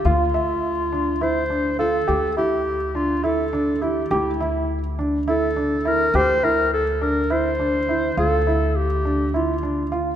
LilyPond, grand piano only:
\new Staff \with { instrumentName = "Grand piano" } { \time 7/8 \key d \minor \tempo 4 = 103 f'8 e''4 d'8 e'8 d'8 f'8 | g'8 e'4 d'8 e'8 d'8 e'8 | g'8 e'4 d'8 e'8 d'8 e'8 | g'8 e'4 d'8 e'8 d'8 e'8 |
f'8 e'4 d'8 e'8 d'8 f'8 | }